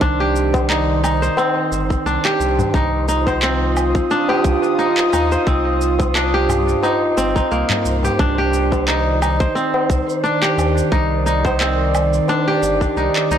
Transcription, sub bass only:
0.01 C2
1.71 G1
2.05 C2
2.40 C2
2.74 C2
4.44 C2
5.13 D#2
5.47 C2
7.17 G1
7.51 C2
7.85 C2
8.19 C2
9.89 C2
10.57 D#2
10.92 C2
12.62 G1
12.96 C2
13.31 C2

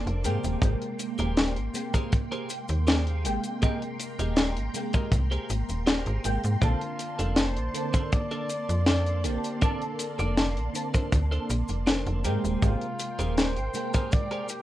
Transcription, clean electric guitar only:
Already playing: D4 A4 A#4 C5
0.25 G4 G#4 A#4 C5
1.00 muted clean electric guitar stroke
1.19 G4 G#4 A#4 C5
1.94 G4 G#4 A#4 C5
2.32 G4 G#4 A#4 C5
2.69 muted clean electric guitar stroke
2.87 G4 G#4 A#4 C5
3.62 G4 G#4 A#4 D#5
4.00 muted clean electric guitar stroke
4.19 G4 G#4 A#4 D#5
4.94 G4 G#4 A#4 D#5
5.31 G4 G#4 A#4 C5
5.69 muted clean electric guitar stroke
5.86 G4 G#4 A#4 C5
6.62 D4 A4 A#4 C5
6.99 muted clean electric guitar stroke
7.19 D4 A4 A#4 D5
7.93 D4 A4 A#4 C5
8.31 D4 A4 A#4 D5
8.69 muted clean electric guitar stroke
8.87 D4 A4 A#4 C5
9.62 D4 A4 A#4 D5
9.99 muted clean electric guitar stroke
10.19 D4 A4 A#4 D5
10.94 D4 A4 A#4 C5
11.31 D4 A4 A#4 C5
11.69 muted clean electric guitar stroke
11.86 D4 A4 A#4 C5
12.24 G4 G#4 A#4 C5
13.00 muted clean electric guitar stroke
13.19 G4 G#4 A#4 C5
13.94 G4 G#4 A#4 C5
14.31 G4 G#4 A#4 C5

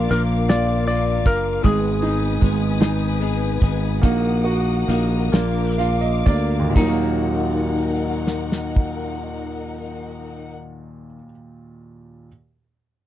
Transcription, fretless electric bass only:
0.11 A#1
1.26 F#1
1.64 G#1
2.42 G#1
3.62 G#1
4.03 A#1
4.89 A#1
5.33 A#1
6.26 D2
6.76 D#2

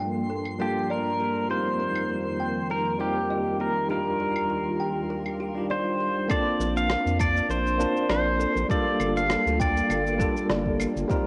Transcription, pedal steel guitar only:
0.62 G4
0.91 A#4
1.51 C5
2.71 A#4
3.01 G4
3.61 A#4
3.91 A#4
5.71 C5
6.31 D5
6.77 F5
7.21 D5
7.51 C5
8.11 C5
8.71 D5
9.17 F5
9.62 D5

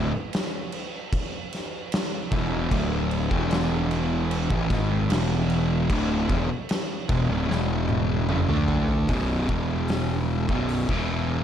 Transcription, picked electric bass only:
Already playing: D1
2.32 E1
2.71 D1
3.31 E1
4.50 A1
4.70 G#1
5.09 E1
5.89 D1
6.29 E1
7.09 E1
7.29 D1
7.49 E1
8.28 F#1
8.49 D2
9.09 B0
9.49 E1
10.49 B0
10.89 E1

